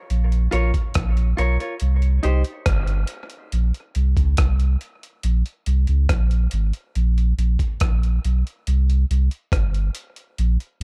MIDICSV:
0, 0, Header, 1, 4, 480
1, 0, Start_track
1, 0, Tempo, 855920
1, 1013, Time_signature, 4, 2, 24, 8
1, 6073, End_track
2, 0, Start_track
2, 0, Title_t, "Clean electric guitar"
2, 0, Program_c, 0, 27
2, 288, Note_on_c, 0, 65, 87
2, 294, Note_on_c, 0, 70, 81
2, 297, Note_on_c, 0, 73, 98
2, 392, Note_off_c, 0, 65, 0
2, 395, Note_off_c, 0, 70, 0
2, 397, Note_off_c, 0, 73, 0
2, 769, Note_on_c, 0, 65, 67
2, 777, Note_on_c, 0, 70, 83
2, 779, Note_on_c, 0, 73, 92
2, 873, Note_off_c, 0, 65, 0
2, 877, Note_off_c, 0, 70, 0
2, 878, Note_off_c, 0, 73, 0
2, 897, Note_on_c, 0, 73, 51
2, 899, Note_on_c, 0, 70, 51
2, 903, Note_on_c, 0, 65, 42
2, 972, Note_off_c, 0, 73, 0
2, 973, Note_off_c, 0, 70, 0
2, 976, Note_off_c, 0, 65, 0
2, 1250, Note_on_c, 0, 63, 68
2, 1255, Note_on_c, 0, 67, 78
2, 1259, Note_on_c, 0, 72, 74
2, 1354, Note_off_c, 0, 63, 0
2, 1356, Note_off_c, 0, 67, 0
2, 1358, Note_off_c, 0, 72, 0
2, 6073, End_track
3, 0, Start_track
3, 0, Title_t, "Sub bass"
3, 0, Program_c, 1, 38
3, 58, Note_on_c, 1, 34, 92
3, 270, Note_off_c, 1, 34, 0
3, 298, Note_on_c, 1, 34, 88
3, 405, Note_off_c, 1, 34, 0
3, 540, Note_on_c, 1, 34, 98
3, 752, Note_off_c, 1, 34, 0
3, 777, Note_on_c, 1, 35, 85
3, 885, Note_off_c, 1, 35, 0
3, 1018, Note_on_c, 1, 36, 92
3, 1231, Note_off_c, 1, 36, 0
3, 1259, Note_on_c, 1, 36, 95
3, 1366, Note_off_c, 1, 36, 0
3, 1496, Note_on_c, 1, 31, 89
3, 1709, Note_off_c, 1, 31, 0
3, 1979, Note_on_c, 1, 34, 86
3, 2086, Note_off_c, 1, 34, 0
3, 2219, Note_on_c, 1, 36, 84
3, 2326, Note_off_c, 1, 36, 0
3, 2341, Note_on_c, 1, 37, 80
3, 2444, Note_off_c, 1, 37, 0
3, 2460, Note_on_c, 1, 36, 91
3, 2672, Note_off_c, 1, 36, 0
3, 2939, Note_on_c, 1, 34, 97
3, 3046, Note_off_c, 1, 34, 0
3, 3179, Note_on_c, 1, 36, 92
3, 3287, Note_off_c, 1, 36, 0
3, 3301, Note_on_c, 1, 37, 91
3, 3404, Note_off_c, 1, 37, 0
3, 3420, Note_on_c, 1, 34, 99
3, 3632, Note_off_c, 1, 34, 0
3, 3662, Note_on_c, 1, 32, 88
3, 3768, Note_off_c, 1, 32, 0
3, 3902, Note_on_c, 1, 34, 103
3, 4113, Note_off_c, 1, 34, 0
3, 4139, Note_on_c, 1, 34, 87
3, 4246, Note_off_c, 1, 34, 0
3, 4383, Note_on_c, 1, 34, 81
3, 4594, Note_off_c, 1, 34, 0
3, 4625, Note_on_c, 1, 35, 88
3, 4730, Note_off_c, 1, 35, 0
3, 4865, Note_on_c, 1, 36, 100
3, 5075, Note_off_c, 1, 36, 0
3, 5106, Note_on_c, 1, 36, 95
3, 5210, Note_off_c, 1, 36, 0
3, 5340, Note_on_c, 1, 31, 94
3, 5552, Note_off_c, 1, 31, 0
3, 5825, Note_on_c, 1, 34, 109
3, 5930, Note_off_c, 1, 34, 0
3, 6073, End_track
4, 0, Start_track
4, 0, Title_t, "Drums"
4, 57, Note_on_c, 9, 42, 72
4, 113, Note_off_c, 9, 42, 0
4, 180, Note_on_c, 9, 42, 41
4, 236, Note_off_c, 9, 42, 0
4, 294, Note_on_c, 9, 42, 75
4, 350, Note_off_c, 9, 42, 0
4, 415, Note_on_c, 9, 36, 64
4, 417, Note_on_c, 9, 42, 52
4, 471, Note_off_c, 9, 36, 0
4, 473, Note_off_c, 9, 42, 0
4, 529, Note_on_c, 9, 42, 106
4, 535, Note_on_c, 9, 37, 122
4, 536, Note_on_c, 9, 36, 119
4, 585, Note_off_c, 9, 42, 0
4, 591, Note_off_c, 9, 37, 0
4, 592, Note_off_c, 9, 36, 0
4, 656, Note_on_c, 9, 42, 47
4, 712, Note_off_c, 9, 42, 0
4, 776, Note_on_c, 9, 42, 60
4, 832, Note_off_c, 9, 42, 0
4, 899, Note_on_c, 9, 42, 51
4, 955, Note_off_c, 9, 42, 0
4, 1007, Note_on_c, 9, 42, 79
4, 1063, Note_off_c, 9, 42, 0
4, 1133, Note_on_c, 9, 42, 48
4, 1189, Note_off_c, 9, 42, 0
4, 1252, Note_on_c, 9, 42, 66
4, 1309, Note_off_c, 9, 42, 0
4, 1371, Note_on_c, 9, 42, 55
4, 1427, Note_off_c, 9, 42, 0
4, 1491, Note_on_c, 9, 37, 105
4, 1492, Note_on_c, 9, 42, 94
4, 1493, Note_on_c, 9, 36, 114
4, 1547, Note_off_c, 9, 37, 0
4, 1548, Note_off_c, 9, 42, 0
4, 1549, Note_off_c, 9, 36, 0
4, 1612, Note_on_c, 9, 42, 49
4, 1668, Note_off_c, 9, 42, 0
4, 1724, Note_on_c, 9, 42, 80
4, 1780, Note_off_c, 9, 42, 0
4, 1848, Note_on_c, 9, 42, 50
4, 1905, Note_off_c, 9, 42, 0
4, 1975, Note_on_c, 9, 42, 68
4, 2032, Note_off_c, 9, 42, 0
4, 2100, Note_on_c, 9, 42, 43
4, 2156, Note_off_c, 9, 42, 0
4, 2214, Note_on_c, 9, 42, 72
4, 2271, Note_off_c, 9, 42, 0
4, 2337, Note_on_c, 9, 36, 66
4, 2339, Note_on_c, 9, 42, 51
4, 2393, Note_off_c, 9, 36, 0
4, 2395, Note_off_c, 9, 42, 0
4, 2452, Note_on_c, 9, 42, 98
4, 2457, Note_on_c, 9, 36, 114
4, 2458, Note_on_c, 9, 37, 113
4, 2508, Note_off_c, 9, 42, 0
4, 2513, Note_off_c, 9, 36, 0
4, 2514, Note_off_c, 9, 37, 0
4, 2577, Note_on_c, 9, 42, 48
4, 2633, Note_off_c, 9, 42, 0
4, 2697, Note_on_c, 9, 42, 62
4, 2753, Note_off_c, 9, 42, 0
4, 2822, Note_on_c, 9, 42, 50
4, 2878, Note_off_c, 9, 42, 0
4, 2935, Note_on_c, 9, 42, 84
4, 2991, Note_off_c, 9, 42, 0
4, 3060, Note_on_c, 9, 42, 42
4, 3116, Note_off_c, 9, 42, 0
4, 3176, Note_on_c, 9, 42, 71
4, 3232, Note_off_c, 9, 42, 0
4, 3293, Note_on_c, 9, 42, 53
4, 3349, Note_off_c, 9, 42, 0
4, 3416, Note_on_c, 9, 36, 110
4, 3417, Note_on_c, 9, 37, 97
4, 3418, Note_on_c, 9, 42, 98
4, 3472, Note_off_c, 9, 36, 0
4, 3473, Note_off_c, 9, 37, 0
4, 3474, Note_off_c, 9, 42, 0
4, 3538, Note_on_c, 9, 42, 46
4, 3594, Note_off_c, 9, 42, 0
4, 3651, Note_on_c, 9, 42, 83
4, 3707, Note_off_c, 9, 42, 0
4, 3777, Note_on_c, 9, 42, 47
4, 3833, Note_off_c, 9, 42, 0
4, 3900, Note_on_c, 9, 42, 67
4, 3956, Note_off_c, 9, 42, 0
4, 4025, Note_on_c, 9, 42, 41
4, 4081, Note_off_c, 9, 42, 0
4, 4142, Note_on_c, 9, 42, 71
4, 4198, Note_off_c, 9, 42, 0
4, 4258, Note_on_c, 9, 36, 63
4, 4261, Note_on_c, 9, 42, 48
4, 4314, Note_off_c, 9, 36, 0
4, 4317, Note_off_c, 9, 42, 0
4, 4375, Note_on_c, 9, 42, 101
4, 4380, Note_on_c, 9, 36, 113
4, 4382, Note_on_c, 9, 37, 112
4, 4432, Note_off_c, 9, 42, 0
4, 4436, Note_off_c, 9, 36, 0
4, 4438, Note_off_c, 9, 37, 0
4, 4505, Note_on_c, 9, 42, 43
4, 4561, Note_off_c, 9, 42, 0
4, 4624, Note_on_c, 9, 42, 67
4, 4680, Note_off_c, 9, 42, 0
4, 4749, Note_on_c, 9, 42, 47
4, 4805, Note_off_c, 9, 42, 0
4, 4862, Note_on_c, 9, 42, 81
4, 4918, Note_off_c, 9, 42, 0
4, 4989, Note_on_c, 9, 42, 41
4, 5045, Note_off_c, 9, 42, 0
4, 5107, Note_on_c, 9, 42, 70
4, 5164, Note_off_c, 9, 42, 0
4, 5223, Note_on_c, 9, 42, 47
4, 5279, Note_off_c, 9, 42, 0
4, 5338, Note_on_c, 9, 36, 117
4, 5343, Note_on_c, 9, 37, 96
4, 5343, Note_on_c, 9, 42, 94
4, 5394, Note_off_c, 9, 36, 0
4, 5399, Note_off_c, 9, 37, 0
4, 5400, Note_off_c, 9, 42, 0
4, 5465, Note_on_c, 9, 42, 49
4, 5521, Note_off_c, 9, 42, 0
4, 5578, Note_on_c, 9, 42, 87
4, 5634, Note_off_c, 9, 42, 0
4, 5699, Note_on_c, 9, 42, 50
4, 5756, Note_off_c, 9, 42, 0
4, 5823, Note_on_c, 9, 42, 67
4, 5879, Note_off_c, 9, 42, 0
4, 5946, Note_on_c, 9, 42, 38
4, 6002, Note_off_c, 9, 42, 0
4, 6073, End_track
0, 0, End_of_file